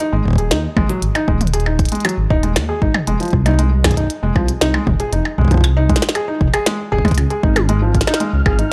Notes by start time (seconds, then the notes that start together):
0.00 D#4, closed hi-hat
0.12 G#1 G#3
0.25 D#1, kick
0.28 kick
0.31 kick
0.33 kick
0.36 G#4, kick, closed hi-hat
0.51 D#2 D#4, snare, closed hi-hat
0.77 G#1 G#3, kick, mid tom, percussion blips
0.89 F#3, closed hi-hat
1.02 G#1, closed hi-hat
1.15 D#4, closed hi-hat, percussion blips
1.28 D#1 G#3, kick
1.41 closed hi-hat, mid tom
1.47 closed hi-hat
1.53 G#4, closed hi-hat
1.60 closed hi-hat
1.66 D#4, percussion blips
1.79 kick, closed hi-hat
1.85 closed hi-hat
1.89 closed hi-hat
1.92 G#3, closed hi-hat
2.00 closed hi-hat
2.05 F#3, closed hi-hat, percussion blips
2.09 closed hi-hat
2.18 G#1
2.30 D#1 D#4, kick
2.43 G#3, closed hi-hat
2.56 D#2, snare, closed hi-hat, percussion blips
2.69 G#4
2.82 G#1 D#4, kick
2.94 mid tom, percussion blips
3.07 F1 G#3, closed hi-hat
3.20 F3, closed hi-hat
3.23 closed hi-hat
3.25 closed hi-hat
3.28 closed hi-hat
3.31 C2, kick, closed hi-hat
3.46 D#4, closed hi-hat, mid tom, percussion blips
3.48 mid tom
3.51 mid tom
3.54 mid tom
3.56 G#3, closed hi-hat, mid tom
3.84 G#4, kick, snare, closed hi-hat, percussion blips
3.88 kick
3.91 kick, closed hi-hat
3.94 D#4, kick
3.97 kick, closed hi-hat
4.00 kick
4.04 kick
4.07 kick, closed hi-hat
4.23 F1 G#3
4.36 C2 F3, kick, percussion blips
4.48 closed hi-hat
4.61 C2 D#4, snare, closed hi-hat
4.74 G#3, percussion blips
4.87 F1, kick, mid tom
5.00 G#4, closed hi-hat
5.13 F1 D#4, closed hi-hat
5.25 percussion blips
5.38 C2 G#3, kick
5.41 kick
5.45 kick
5.48 kick
5.51 F3, kick, closed hi-hat, mid tom
5.54 kick
5.57 kick
5.61 kick, closed hi-hat, percussion blips
5.77 D#4
5.89 G#3, kick, closed hi-hat
5.96 snare, closed hi-hat
6.02 snare, closed hi-hat
6.09 snare
6.15 G#4, closed hi-hat, percussion blips
6.28 D#4
6.41 F1, kick
6.54 G#4, closed hi-hat, percussion blips
6.66 G#3, snare, closed hi-hat
6.92 F1 G#4, kick
6.98 kick
7.05 G#3, kick, closed hi-hat, mid tom, percussion blips
7.08 closed hi-hat
7.11 kick, closed hi-hat
7.14 C#2 F6, closed hi-hat
7.18 closed hi-hat, percussion blips
7.30 G#4, closed hi-hat
7.43 G#1 D#4, kick
7.56 closed hi-hat, mid tom, percussion blips
7.69 G#3, closed hi-hat
7.82 F3
7.95 kick, closed hi-hat
8.01 snare, closed hi-hat
8.07 D#4, snare, percussion blips
8.14 snare
8.20 G#3, closed hi-hat
8.33 C#2
8.46 G#1 G#4, kick, percussion blips
8.59 D#4, closed hi-hat